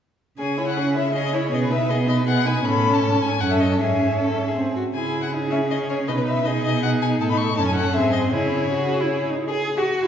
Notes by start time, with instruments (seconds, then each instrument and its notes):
0.39 cello C#3, viola C#4, violin G#4 G#5
0.58 viola E4, violin C#5
0.68 violin F#5
0.77 viola C#4, violin G#4
0.94 viola E4, violin C#5 E5
1.14 viola C#4, violin G#4 D#5
1.33 viola E4, violin C#5
1.52 cello B2, viola B3, violin G#4 D#5
1.63 violin B4
1.70 viola D#4, violin B4 E5
1.89 viola B3, violin G#4 D#5
2.07 viola D#4, violin B4 D#5
2.26 viola B3, violin G#4 F#5
2.45 viola D#4, violin B4 G#5
2.65 cello A2, viola C#4, violin A4 B5
2.94 violin A5
3.03 cello G#2
3.22 violin G#5
3.40 cello F#2, viola C#4, violin A4 F#5
3.50 violin E5
3.60 violin D#5
3.79 cello G#2, viola C#4, violin G#4 E5
4.19 violin A4
4.48 violin G#4
4.57 cello G#2, viola C4
4.76 violin F#4
4.94 cello C#3, viola E4, violin G#4 G#5
5.22 violin F#5
5.33 viola D#4, violin G#4
5.51 viola C#4, violin E5
5.71 viola C#4, violin D#5
5.89 violin C#5
6.08 cello B2, viola D#4, violin B4 D#5
6.18 violin B4
6.27 violin E5
6.45 viola D#4, violin G#4 D#5
6.64 violin D#5
6.83 viola D#4, violin F#5
7.02 violin G#5
7.21 cello A2, violin A4 A5
7.30 violin B5
7.37 violin C#6
7.57 cello F#2, viola C#4, violin A4 A5
7.67 violin G#5
7.75 violin F#5
7.93 cello G#2, viola C4, violin G#4 E5
8.13 violin D#5
8.31 cello C#3, viola E4, violin G#4 C#5
8.73 viola F#4
9.00 viola E4
9.30 viola D#4
9.48 violin G#4, cello G#4, viola G#4
9.77 violin F#4, cello F#4, viola F#4